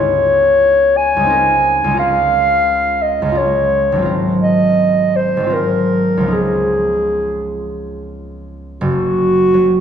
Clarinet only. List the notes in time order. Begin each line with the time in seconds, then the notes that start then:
Already playing: C#5
0.97 G#5
1.99 F5
3.02 D#5
3.37 C#5
4.43 D#5
5.16 C5
5.53 A#4
6.33 G#4
8.82 F#4